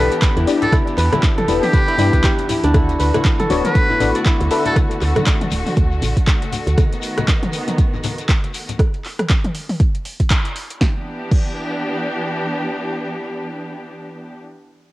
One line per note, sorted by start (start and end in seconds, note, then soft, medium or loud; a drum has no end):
0.00 2.70 E3 medium
0.00 1.48 B3 medium
0.00 2.70 B3 medium
0.00 2.70 D4 medium
0.00 0.36 E4 medium
0.00 2.70 G4 medium
0.00 1.18 A4 medium
0.00 0.12 B4 loud
0.00 0.22 B4 medium
0.00 0.22 D5 medium
0.12 closed hi-hat soft
0.12 shekere soft
0.22 0.97 B4 medium
0.22 kick loud
0.22 clap loud
0.22 closed hi-hat medium
0.22 shekere medium
0.37 0.45 E2 loud
0.37 0.72 E4 medium
0.37 closed hi-hat soft
0.37 muted conga medium
0.37 shekere soft
0.47 0.60 D4 loud
0.47 0.60 E4 medium
0.47 0.60 G4 medium
0.47 0.60 D5 loud
0.47 open hi-hat loud
0.47 shekere loud
0.62 0.75 A4 medium
0.62 1.73 D5 medium
0.62 closed hi-hat soft
0.62 low conga loud
0.62 shekere soft
0.72 1.12 E4 medium
0.72 kick loud
0.72 cross-stick loud
0.72 closed hi-hat medium
0.72 high conga loud
0.72 shekere medium
0.87 closed hi-hat soft
0.87 muted conga soft
0.87 shekere soft
0.97 1.10 E2 loud
0.97 1.73 B4 medium
0.97 clap soft
0.97 open hi-hat medium
0.97 shekere medium
1.12 1.88 E4 medium
1.12 cross-stick loud
1.12 closed hi-hat soft
1.12 mid tom medium
1.12 high conga loud
1.12 low conga medium
1.12 shekere soft
1.23 kick loud
1.23 clap loud
1.23 closed hi-hat medium
1.23 shekere medium
1.38 2.69 A4 medium
1.38 closed hi-hat soft
1.38 mid tom loud
1.38 high conga medium
1.38 shekere soft
1.48 1.60 E1 loud
1.48 3.34 B3 medium
1.48 1.96 D4 medium
1.48 1.96 E4 medium
1.48 1.96 G4 medium
1.48 1.96 B4 medium
1.48 open hi-hat medium
1.48 shekere medium
1.63 2.33 G4 loud
1.63 open hi-hat medium
1.63 mid tom medium
1.63 muted conga soft
1.63 shekere soft
1.73 2.13 B4 medium
1.73 kick loud
1.73 closed hi-hat medium
1.73 high conga medium
1.73 shekere medium
1.88 1.98 E4 medium
1.88 closed hi-hat soft
1.88 shekere soft
1.98 2.11 G2 medium
1.98 2.73 D4 loud
1.98 2.49 E4 loud
1.98 2.73 E4 medium
1.98 2.73 G4 medium
1.98 2.73 B4 loud
1.98 open hi-hat medium
1.98 muted conga soft
1.98 high conga medium
1.98 shekere medium
2.13 2.22 D2 medium
2.13 2.99 B4 medium
2.13 kick medium
2.13 closed hi-hat soft
2.13 shekere soft
2.24 3.65 G4 loud
2.24 kick loud
2.24 clap loud
2.24 closed hi-hat medium
2.24 shekere medium
2.39 closed hi-hat soft
2.39 muted conga soft
2.39 high conga medium
2.39 shekere soft
2.49 2.74 E4 medium
2.49 open hi-hat medium
2.49 low conga loud
2.49 shekere medium
2.64 2.97 D2 medium
2.64 4.32 D4 loud
2.64 closed hi-hat soft
2.64 shekere soft
2.74 6.74 D3 medium
2.74 8.75 A3 medium
2.74 3.14 E4 medium
2.74 8.75 F#4 medium
2.74 kick loud
2.74 cross-stick loud
2.74 closed hi-hat medium
2.74 high conga loud
2.74 shekere soft
2.89 closed hi-hat soft
2.89 muted conga medium
2.89 shekere soft
3.00 3.12 D2 loud
3.00 3.75 B4 medium
3.00 open hi-hat medium
3.00 shekere medium
3.14 3.90 E4 medium
3.14 cross-stick medium
3.14 closed hi-hat soft
3.14 high conga loud
3.14 low conga loud
3.14 shekere soft
3.25 kick loud
3.25 clap loud
3.25 closed hi-hat medium
3.25 shekere medium
3.39 4.71 A4 medium
3.39 closed hi-hat soft
3.39 mid tom loud
3.39 high conga medium
3.39 shekere soft
3.50 3.62 D1 loud
3.50 5.36 B3 medium
3.50 3.98 D4 medium
3.50 3.98 F#4 medium
3.50 3.98 A4 medium
3.50 3.98 C#5 loud
3.50 open hi-hat medium
3.50 shekere medium
3.64 4.15 B4 medium
3.64 closed hi-hat soft
3.64 mid tom medium
3.64 muted conga soft
3.64 shekere soft
3.75 4.51 B4 medium
3.75 kick loud
3.75 closed hi-hat medium
3.75 shekere medium
3.90 4.25 E4 medium
3.90 low conga medium
3.90 shekere soft
4.00 4.12 A1 medium
4.00 4.13 D4 loud
4.00 4.13 F#4 medium
4.00 4.13 A4 medium
4.00 4.13 B4 loud
4.00 open hi-hat medium
4.00 muted conga soft
4.00 high conga medium
4.00 low conga loud
4.00 shekere medium
4.15 5.26 D5 medium
4.15 closed hi-hat soft
4.15 shekere soft
4.26 4.65 E4 medium
4.26 kick loud
4.26 clap loud
4.26 closed hi-hat medium
4.26 shekere medium
4.40 4.49 D2 loud
4.40 closed hi-hat soft
4.40 muted conga soft
4.40 shekere soft
4.51 4.63 D4 loud
4.51 4.63 F#4 medium
4.51 4.63 A4 medium
4.51 5.74 B4 medium
4.51 4.63 E5 loud
4.51 open hi-hat medium
4.51 shekere medium
4.65 6.22 E4 medium
4.65 4.76 A4 medium
4.65 closed hi-hat soft
4.65 low conga medium
4.65 shekere soft
4.76 kick loud
4.76 cross-stick medium
4.76 closed hi-hat medium
4.76 high conga loud
4.76 shekere soft
4.91 closed hi-hat soft
4.91 muted conga medium
4.91 shekere soft
5.01 5.13 D2 loud
5.01 clap soft
5.01 open hi-hat medium
5.01 shekere medium
5.16 cross-stick medium
5.16 closed hi-hat soft
5.16 mid tom medium
5.16 high conga loud
5.16 low conga loud
5.16 shekere soft
5.26 kick loud
5.26 clap loud
5.26 closed hi-hat medium
5.26 shekere soft
5.41 closed hi-hat soft
5.41 mid tom loud
5.41 high conga medium
5.41 shekere soft
5.51 5.64 D1 medium
5.51 open hi-hat medium
5.51 shekere medium
5.66 open hi-hat soft
5.66 mid tom medium
5.66 muted conga medium
5.66 shekere soft
5.77 6.01 D2 medium
5.77 kick loud
5.77 closed hi-hat medium
5.77 high conga medium
5.77 shekere soft
5.91 shekere soft
6.02 6.14 A1 loud
6.02 open hi-hat medium
6.02 muted conga soft
6.02 high conga medium
6.02 shekere medium
6.16 kick medium
6.16 closed hi-hat soft
6.16 shekere soft
6.27 kick loud
6.27 clap loud
6.27 closed hi-hat medium
6.27 shekere medium
6.42 closed hi-hat soft
6.42 muted conga medium
6.42 high conga medium
6.42 shekere soft
6.52 open hi-hat medium
6.52 low conga medium
6.52 shekere medium
6.67 6.76 D2 medium
6.67 closed hi-hat soft
6.67 shekere soft
6.78 8.77 D#3 medium
6.78 8.77 B3 medium
6.78 kick loud
6.78 cross-stick medium
6.78 closed hi-hat medium
6.78 high conga loud
6.78 shekere soft
6.92 closed hi-hat soft
6.92 muted conga medium
6.92 shekere soft
7.02 open hi-hat medium
7.02 shekere medium
7.18 cross-stick medium
7.18 closed hi-hat soft
7.18 high conga loud
7.18 low conga loud
7.18 shekere soft
7.28 kick loud
7.28 clap loud
7.28 closed hi-hat medium
7.28 muted conga soft
7.28 shekere medium
7.43 closed hi-hat soft
7.43 mid tom loud
7.43 high conga medium
7.43 shekere soft
7.53 open hi-hat medium
7.53 shekere medium
7.68 closed hi-hat soft
7.68 mid tom medium
7.68 muted conga medium
7.68 shekere soft
7.78 kick loud
7.78 closed hi-hat medium
7.78 shekere medium
7.94 low conga medium
7.94 shekere soft
8.04 open hi-hat medium
8.04 muted conga soft
8.04 high conga medium
8.04 low conga loud
8.04 shekere medium
8.19 closed hi-hat soft
8.19 shekere soft
8.29 kick loud
8.29 clap loud
8.29 closed hi-hat medium
8.44 closed hi-hat soft
8.44 muted conga medium
8.44 shekere soft
8.54 open hi-hat medium
8.54 shekere medium
8.68 closed hi-hat soft
8.68 low conga medium
8.68 shekere soft
8.79 kick loud
8.79 cross-stick medium
8.79 closed hi-hat medium
8.94 closed hi-hat soft
9.05 clap soft
9.05 open hi-hat medium
9.19 cross-stick medium
9.19 closed hi-hat soft
9.19 mid tom medium
9.30 kick loud
9.30 clap loud
9.30 closed hi-hat medium
9.45 closed hi-hat soft
9.45 mid tom medium
9.55 open hi-hat medium
9.70 open hi-hat medium
9.70 mid tom medium
9.80 kick loud
9.80 closed hi-hat medium
9.95 closed hi-hat soft
10.05 open hi-hat medium
10.20 kick medium
10.20 closed hi-hat soft
10.31 kick loud
10.31 clap loud
10.31 closed hi-hat medium
10.45 closed hi-hat soft
10.56 open hi-hat loud
10.70 closed hi-hat soft
10.81 14.38 E3 medium
10.81 14.38 B3 medium
10.81 14.38 D4 medium
10.81 14.38 G4 medium
10.81 kick loud
10.81 snare medium
11.31 kick loud
11.31 crash medium